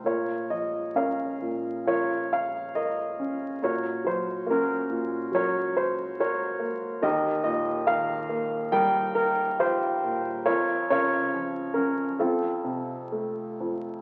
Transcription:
<<
  \new Staff \with { instrumentName = "Upright piano" } { \time 4/4 \key bes \minor \tempo 4 = 69 << { des''8 ees''8 f''4 des''8 f''8 ees''4 | des''8 c''8 bes'4 des''8 c''8 des''4 | ees''8 ees''8 f''4 g''8 bes'8 c''4 | des''8 des''4 bes'8 a'4. r8 | } \\ { <f' bes'>4 <bes' des''>4 <f' bes'>4 bes'4 | <ges' bes'>4 <des' ges'>4 <ges' bes'>4 <ges' bes'>4 | <g' bes'>4 bes'4 bes'4 <f' g'>4 | <f' bes'>8 <f' bes'>4. <c' f'>2 | } >> }
  \new Staff \with { instrumentName = "Upright piano" } { \clef bass \time 4/4 \key bes \minor bes,8 f8 des'8 bes,8 f4. des'8 | bes,8 ges8 bes8 bes,8 ges4. bes8 | ees,8 bes,8 ees8 bes8 g4. bes,8 | f,8 des8 f8 des'8 f,8 c8 a8 f,8 | }
>>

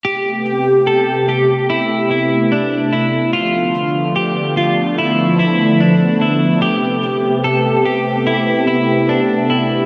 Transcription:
<<
  \new Staff \with { instrumentName = "Clean electric guitar" } { \time 4/4 \key a \minor \tempo 4 = 73 g'4 a'8 g'8 e'8 e'8 d'8 e'8 | f'4 g'8 f'8 e'8 e'8 d'8 e'8 | g'4 a'8 g'8 e'8 e'8 d'8 e'8 | }
  \new Staff \with { instrumentName = "Analog synth pad" } { \clef bass \time 4/4 \key a \minor << { <c g'>1 | <d f>1 | <c g'>1 | } \\ { <a b>1~ | <a b>1~ | <a b>1 | } >> }
>>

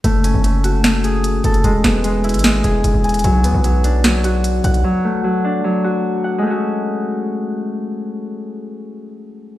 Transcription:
<<
  \new Staff \with { instrumentName = "Harp" } { \time 4/4 \key fis \minor \tempo 4 = 150 a8 cis'8 a8 fis'8 a8 gis'4 a'8 | gis8 b8 gis8 e'8 gis8 gis'4 gis''8 | fis8 b8 fis8 d'8 fis8 fis'4 fis''8 | fis8 a8 fis8 d'8 fis8 fis'4 fis''8 |
<gis a cis' fis'>1~ | <gis a cis' fis'>1 | }
  \new Staff \with { instrumentName = "808-style bass" } { \clef bass \time 4/4 \key fis \minor fis,,8. fis,,2~ fis,,8. fis,,8 | e,,8 e,,4~ e,,16 gis,,8. e,,8 e,,16 e,,8. | b,,8 d,16 b,,2~ b,,8. b,,8 | r1 |
r1 | r1 | }
  \new DrumStaff \with { instrumentName = "Drums" } \drummode { \time 4/4 hh8 hh8 hh8 hh8 <hh sn>8 hh8 hh8 hh16 hh16 | hh8 <hh sn>8 hh8 hh32 hh32 hh32 hh32 <hh sn>8 hh8 hh8 hh32 hh32 hh32 hh32 | hh8 hh8 hh8 hh8 <hh sn>8 hh8 hh8 hh16 hh16 | r4 r4 r4 r4 |
r4 r4 r4 r4 | r4 r4 r4 r4 | }
>>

